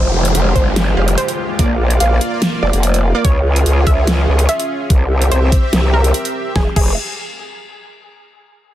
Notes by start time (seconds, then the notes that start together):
Already playing: F1 G#3 F4 G4 C5, downlifter
0.25 closed hi-hat
0.35 F1, closed hi-hat
0.56 G1 C5, kick, closed hi-hat
0.76 snare, closed hi-hat
0.97 F1 G#3 G4 F5
1.08 closed hi-hat
1.18 C5, closed hi-hat
1.28 closed hi-hat
1.59 A#1 A#3 F4 D5, kick, closed hi-hat
1.91 closed hi-hat
2.00 A#1 F5, closed hi-hat
2.21 closed hi-hat
2.42 snare, closed hi-hat
2.62 F1 D5
2.73 F1, closed hi-hat
2.83 closed hi-hat
2.94 closed hi-hat
3.15 A#3 F4 D5
3.25 C#2 C#4 F4 G#4 C#5, kick, closed hi-hat
3.56 closed hi-hat
3.66 C#2, closed hi-hat
3.87 C#2 E5, kick, closed hi-hat
4.07 snare, closed hi-hat
4.28 C#2
4.39 closed hi-hat
4.49 E5, closed hi-hat
4.60 closed hi-hat
4.90 C2 C4 G4 E5, kick, closed hi-hat
5.22 closed hi-hat
5.31 C2 C5, closed hi-hat
5.52 kick, closed hi-hat
5.73 C2, snare, closed hi-hat
5.94 A#4
6.04 closed hi-hat
6.14 closed hi-hat
6.25 closed hi-hat
6.56 F1 G4 G#4 F5, kick, snare
6.76 F1 G#4, kick, crash